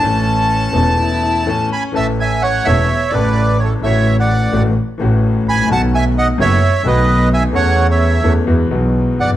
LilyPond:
<<
  \new Staff \with { instrumentName = "Bandoneon" } { \time 4/4 \key a \major \tempo 4 = 129 a''2.~ a''8 <gis'' b''>8 | <e'' a''>8 <e'' gis''>8 <cis'' fis''>8 <cis'' e''>4 <b' d''>4 <a' cis''>8 | <cis'' e''>8. <d'' fis''>4 r4. r16 <gis'' b''>8 | <fis'' a''>8 <e'' gis''>8 <dis'' fis''>8 <cis'' e''>4 <b' dis''>4 <e'' gis''>8 |
<cis'' fis''>8. <cis'' e''>4 r4. r16 <d'' fis''>8 | }
  \new Staff \with { instrumentName = "Cello" } { \time 4/4 \key a \major cis'2 e'4 cis'4 | r1 | r1 | r1 |
r1 | }
  \new Staff \with { instrumentName = "Grand piano" } { \clef bass \time 4/4 \key a \major << { <a,, a, e a cis' a'>4. <e,, e, e a cis' a'>4. <a,, a, e a cis' a'>8 r8 | <a,, a, e a cis' a'>4. <e,, e, e a cis' a'>8 r8 <a,, a, cis e a a'>4. | <a,, a, cis e a fis'>4. <a,, a, e a cis' fis'>8 r8 <a,, a, e a cis' fis'>4. | <b,, b, dis a b fis'>4. <fis,, fis, dis a b fis'>8 r8 <b,, b, dis a b fis'>4. |
<e, e a cis' a'>4. <e, e a cis' a'>8 <e, e gis b fis'>8 <b,, b, e gis b fis'>4. | } \\ { r1 | r1 | r2. r8 r32 gis,,32 a,,32 bes,,32 | r1 |
r2. r8 r32 fis,,32 g,,32 r32 | } >> }
  \new Staff \with { instrumentName = "Double bass" } { \clef bass \time 4/4 \key a \major a,,4. e,,8 r2 | a,,4. e,,8 r8 a,,4. | a,,4. a,,8 r8 a,,4 a,,8 | b,,4. fis,,8 r8 b,,4. |
e,4. e,8 e,8 b,,4 g,,8 | }
>>